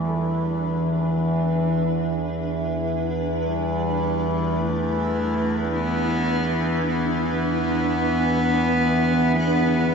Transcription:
0.00 9.95 E2 medium
0.00 9.95 E3 medium
0.00 9.95 D4 medium
0.00 9.95 E4 medium
0.00 9.95 B4 medium
0.05 0.90 G3 medium
0.05 6.86 A4 medium
0.16 6.95 E3 medium
0.88 1.21 F3 medium
1.19 2.31 E3 medium
3.43 4.58 G3 medium
4.57 5.73 A3 loud
5.71 6.83 B3 loud
6.88 9.95 B3 loud

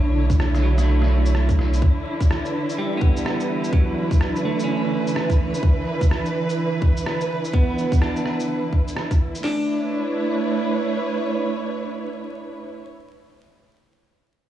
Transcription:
0.00 1.80 B1 medium
0.00 1.00 D3 medium
0.00 9.44 D3 medium
0.00 1.82 A3 medium
0.00 9.44 E4 medium
0.00 2.94 C#5 medium
0.30 kick loud
0.30 shaker medium
0.40 cross-stick loud
0.55 cross-stick soft
0.55 shaker soft
0.63 1.72 F#3 medium
0.78 cross-stick soft
0.78 shaker medium
0.82 1.85 A3 soft
1.02 cross-stick soft
1.26 shaker soft
1.35 cross-stick loud
1.49 kick loud
1.49 shaker soft
1.59 cross-stick soft
1.74 shaker medium
1.82 kick loud
2.02 9.44 E3 medium
2.20 kick loud
2.20 shaker soft
2.31 cross-stick loud
2.41 9.44 B4 medium
2.45 shaker soft
2.69 shaker soft
2.78 3.86 G3 medium
2.97 3.99 B3 medium
3.01 kick medium
3.17 shaker medium
3.26 cross-stick loud
3.40 shaker soft
3.64 shaker soft
3.73 4.81 F#3 medium
3.73 kick loud
4.11 kick medium
4.11 shaker soft
4.21 cross-stick medium
4.36 shaker soft
4.45 5.53 A3 medium
4.60 shaker soft
4.64 5.66 C#4 medium
5.07 shaker soft
5.16 cross-stick medium
5.30 kick medium
5.30 shaker soft
5.54 shaker soft
5.63 kick loud
6.01 kick medium
6.01 shaker medium
6.11 cross-stick medium
6.26 shaker soft
6.49 shaker soft
6.82 kick medium
6.97 shaker soft
7.06 cross-stick medium
7.21 shaker soft
7.45 shaker soft
7.54 8.62 B3 medium
7.54 kick loud
7.78 shaker soft
7.92 kick medium
7.92 shaker medium
8.02 9.10 D4 medium
8.02 cross-stick medium
8.16 shaker soft
8.26 cross-stick medium
8.40 shaker medium
8.73 kick medium
8.88 shaker medium
8.97 cross-stick medium
9.11 kick medium
9.11 shaker soft
9.35 shaker medium
9.44 12.58 A3 medium
9.44 12.57 D4 medium
9.44 snare medium
9.44 crash medium
9.53 12.66 D4 medium
9.61 12.74 E4 medium
9.67 12.80 B4 medium
9.74 12.87 C#5 medium

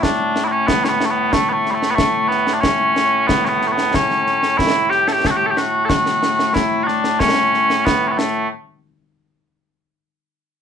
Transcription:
0.00 8.48 A2 medium
0.00 1.05 A3 medium
0.00 0.44 D4 medium
0.00 concert bass drum medium
0.00 snare loud
0.36 snare medium
0.44 0.52 D4 medium
0.44 0.47 E4 medium
0.52 0.67 C#4 medium
0.67 0.84 B3 loud
0.67 concert bass drum medium
0.67 snare loud
0.84 0.89 C#4 medium
0.84 snare medium
0.89 1.05 B3 medium
1.01 snare medium
1.05 1.11 A3 medium
1.11 1.33 B3 medium
1.33 1.49 A3 loud
1.33 concert bass drum medium
1.33 snare loud
1.49 1.70 A3 medium
1.49 1.53 B3 medium
1.66 snare soft
1.70 1.74 G3 medium
1.70 1.91 A3 loud
1.83 snare medium
1.91 1.95 B3 medium
1.95 2.28 A3 medium
1.95 concert bass drum medium
1.95 snare loud
2.28 2.53 B3 medium
2.28 snare soft
2.47 snare medium
2.53 2.61 D4 medium
2.61 3.27 C#4 loud
2.61 concert bass drum medium
2.61 snare loud
2.96 snare medium
3.27 3.45 B3 medium
3.27 concert bass drum medium
3.27 snare loud
3.45 3.67 B3 loud
3.45 3.48 C#4 medium
3.45 snare soft
3.62 snare soft
3.67 3.72 A3 medium
3.72 3.95 B3 medium
3.78 snare medium
3.94 4.58 C#4 loud
3.94 concert bass drum medium
3.94 snare loud
4.11 snare soft
4.27 snare soft
4.43 snare medium
4.58 4.90 E4 loud
4.58 concert bass drum medium
4.58 snare loud
4.90 5.08 G4 loud
4.90 snare soft
5.08 5.13 A4 medium
5.08 snare medium
5.13 5.27 G4 medium
5.25 5.31 A4 medium
5.25 concert bass drum medium
5.25 snare loud
5.31 5.36 F#4 medium
5.36 5.46 G4 loud
5.46 5.51 A4 medium
5.51 5.58 G4 medium
5.57 5.85 F#4 medium
5.57 snare medium
5.85 5.89 A4 loud
5.89 6.53 F#4 loud
5.89 concert bass drum medium
5.89 snare loud
6.06 snare medium
6.23 snare medium
6.39 snare medium
6.53 6.83 E4 loud
6.53 concert bass drum medium
6.53 snare loud
6.83 7.20 D4 medium
6.83 6.87 F#4 medium
6.88 snare soft
7.04 snare medium
7.20 7.85 C#4 loud
7.20 concert bass drum medium
7.20 snare loud
7.37 snare soft
7.54 snare soft
7.70 snare medium
7.85 8.08 B3 medium
7.85 concert bass drum medium
7.85 snare loud
8.08 8.18 B3 soft
8.08 8.11 C#4 soft
8.18 8.48 A3 medium
8.18 snare loud

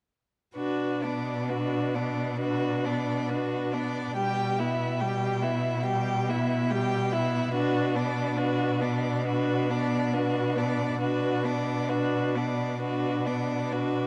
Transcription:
0.55 4.12 B2 soft
0.55 1.05 D4 soft
0.55 1.04 F#4 soft
0.55 1.04 B4 soft
1.02 1.51 B3 soft
1.02 1.51 D4 soft
1.02 1.50 D5 soft
1.49 1.96 D4 soft
1.49 1.96 F#4 soft
1.49 1.96 B4 soft
1.94 2.39 B3 soft
1.94 2.38 D4 soft
1.94 2.39 D5 soft
2.39 2.87 D4 soft
2.39 2.86 F#4 soft
2.39 2.86 B4 soft
2.85 3.32 B3 soft
2.85 3.30 D4 soft
2.85 3.31 D5 soft
3.29 3.75 D4 soft
3.29 3.74 F#4 soft
3.29 3.74 B4 soft
3.72 4.16 B3 soft
3.72 4.16 D4 soft
3.72 4.15 D5 soft
4.16 7.51 B2 soft
4.16 4.61 G3 soft
4.16 4.61 G4 soft
4.16 4.61 G5 soft
4.59 5.03 B3 soft
4.59 5.02 E4 soft
4.59 5.02 E5 soft
5.00 5.44 G3 soft
5.00 5.45 G4 soft
5.00 5.44 G5 soft
5.42 5.85 B3 soft
5.42 5.85 E4 soft
5.42 5.85 E5 soft
5.86 6.31 G3 soft
5.86 6.31 G4 soft
5.86 6.30 G5 soft
6.29 6.72 B3 soft
6.29 6.73 E4 soft
6.29 6.72 E5 soft
6.70 7.13 G3 soft
6.70 7.14 G4 soft
6.70 7.15 G5 soft
7.12 7.53 B3 soft
7.12 7.53 E4 soft
7.12 7.54 E5 soft
7.54 10.97 B2 soft
7.54 7.97 D4 soft
7.54 7.97 F#4 soft
7.54 7.98 B4 soft
7.95 8.39 B3 soft
7.95 8.39 D4 soft
7.95 8.40 D5 soft
8.37 8.83 D4 soft
8.37 8.82 F#4 soft
8.37 8.83 B4 soft
8.80 9.25 B3 soft
8.80 9.25 D4 soft
8.80 9.26 D5 soft
9.25 9.70 D4 soft
9.25 9.72 F#4 soft
9.25 9.72 B4 soft
9.69 10.15 B3 soft
9.69 10.15 D4 soft
9.69 10.15 D5 soft
10.13 10.58 D4 soft
10.13 10.59 F#4 soft
10.13 10.59 B4 soft
10.56 10.99 B3 soft
10.56 11.00 D4 soft
10.56 11.00 D5 soft
10.99 14.07 B2 soft
10.99 11.45 D4 soft
10.99 11.46 F#4 soft
10.99 11.46 B4 soft
11.44 11.91 B3 soft
11.44 11.91 D4 soft
11.44 11.91 D5 soft
11.89 12.36 D4 soft
11.89 12.38 F#4 soft
11.89 12.37 B4 soft
12.35 12.80 B3 soft
12.35 12.81 D4 soft
12.35 12.81 D5 soft
12.81 13.28 D4 soft
12.81 13.27 F#4 soft
12.81 13.28 B4 soft
13.26 13.74 B3 soft
13.26 13.74 D4 soft
13.26 13.74 D5 soft
13.72 14.07 D4 soft
13.72 14.07 F#4 soft
13.72 14.07 B4 soft

